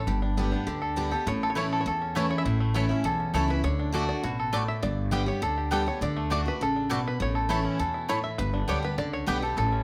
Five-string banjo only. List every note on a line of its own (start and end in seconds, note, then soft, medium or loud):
0.00 0.22 A4 medium
0.07 0.49 G4 medium
0.22 0.51 D4 medium
0.37 0.79 B3 medium
0.52 0.94 D4 medium
0.67 1.09 G4 medium
0.82 1.11 A4 medium
0.97 1.27 D4 medium
1.12 1.27 A4 medium
1.28 1.43 C#5 loud
1.43 1.50 A4 medium
1.50 1.57 C#5 medium
1.58 1.73 C#5 medium
1.73 1.80 A4 medium
1.81 1.87 C#5 medium
1.88 2.17 A4 medium
2.02 2.43 C#4 medium
2.16 2.30 B4 loud
2.31 2.38 C#5 loud
2.38 2.45 E5 loud
2.45 2.74 E4 medium
2.60 3.02 A3 medium
2.75 3.17 E4 medium
2.90 3.19 C#4 medium
3.05 3.33 A4 medium
3.20 3.61 C#4 medium
3.34 3.50 A4 medium
3.50 3.64 B4 medium
3.64 4.08 C#5 loud
3.79 4.71 D4 medium
3.95 4.36 A3 medium
4.09 4.24 D5 loud
4.24 4.53 F#4 medium
4.40 4.81 A4 medium
4.53 4.68 D5 medium
4.68 4.84 E5 loud
4.83 5.24 D5 loud
5.13 5.28 G4 medium
5.28 5.55 C#5 medium
5.43 5.71 A4 medium
5.58 5.99 G4 medium
5.72 6.02 A4 medium
5.88 6.02 C#5 loud
6.03 6.48 D5 loud
6.17 6.58 A3 medium
6.32 6.48 F#4 medium
6.48 6.62 B4 loud
6.62 6.89 A4 medium
6.76 7.17 D4 medium
6.91 7.07 F#4 medium
7.08 7.20 B4 loud
7.22 7.49 C#5 loud
7.35 7.50 A4 medium
7.51 7.64 A4 medium
7.65 8.06 C#4 medium
7.80 8.21 A4 medium
7.94 8.36 E4 medium
8.09 8.23 C#5 loud
8.24 8.39 E5 loud
8.38 8.69 B4 loud
8.54 8.95 D4 medium
8.69 8.84 C#5 medium
8.84 8.98 B4 loud
8.98 9.13 D5 loud
9.13 9.28 C#5 loud
9.28 9.55 B4 medium
9.43 9.57 A4 medium
9.58 9.83 A4 medium
9.72 9.83 C#4 medium